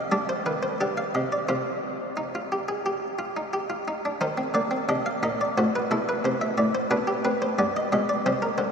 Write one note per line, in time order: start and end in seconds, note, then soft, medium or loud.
0.00 0.12 D#5 medium
0.12 0.33 G3 medium
0.12 0.78 D4 medium
0.12 0.29 D5 medium
0.29 0.46 C5 medium
0.46 0.67 D#3 medium
0.46 0.63 B4 medium
0.63 0.79 C5 medium
0.81 1.02 D3 medium
0.81 1.47 G4 medium
0.81 0.97 D5 medium
0.97 1.14 F5 medium
1.15 1.36 C3 medium
1.15 1.31 D#5 medium
1.32 1.48 D5 medium
1.49 3.84 C3 medium
1.49 2.15 F4 medium
1.49 3.84 C5 medium
2.17 2.34 D#4 medium
2.35 2.51 F4 medium
2.52 2.68 G4 medium
2.68 2.85 G#4 medium
2.86 3.07 G4 medium
3.19 3.36 F4 soft
3.37 3.53 D#4 medium
3.53 3.70 G4 medium
3.70 3.87 F4 soft
3.88 4.05 D#4 medium
4.05 4.22 D4 soft
4.21 4.43 D#3 medium
4.21 4.38 D#4 medium
4.21 4.43 C5 medium
4.38 4.55 C4 medium
4.54 4.76 D3 medium
4.54 4.72 A#3 medium
4.54 4.76 D5 medium
4.71 4.89 C4 medium
4.89 5.10 C3 medium
4.89 5.10 D4 medium
4.89 5.06 D#5 medium
5.06 5.23 F5 medium
5.23 5.44 A#2 medium
5.23 5.44 D#4 medium
5.23 5.40 D#5 medium
5.41 5.57 D5 medium
5.58 5.79 A2 medium
5.58 5.79 F#4 medium
5.58 5.74 C5 medium
5.76 5.92 B4 medium
5.91 6.12 B2 medium
5.91 6.89 E4 medium
5.91 6.08 A4 medium
6.09 6.25 B4 medium
6.24 6.46 C3 medium
6.24 6.42 C5 medium
6.41 6.58 E5 medium
6.58 6.79 A2 medium
6.58 6.75 D5 medium
6.75 6.91 C5 medium
6.91 7.56 B2 medium
6.91 7.12 D4 medium
6.91 7.08 B4 medium
7.07 7.24 G4 medium
7.25 7.46 C4 medium
7.25 7.41 B4 medium
7.42 7.58 C5 medium
7.59 7.79 G2 medium
7.59 7.80 B3 medium
7.59 7.75 D5 medium
7.77 7.92 D#5 medium
7.92 8.13 B2 medium
7.92 8.13 G#3 medium
7.92 8.09 D#5 medium
8.09 8.25 D5 medium
8.26 8.47 C3 medium
8.26 8.72 G3 medium
8.26 8.42 C5 medium
8.42 8.58 A#4 medium
8.58 8.72 D3 medium
8.58 8.72 C5 medium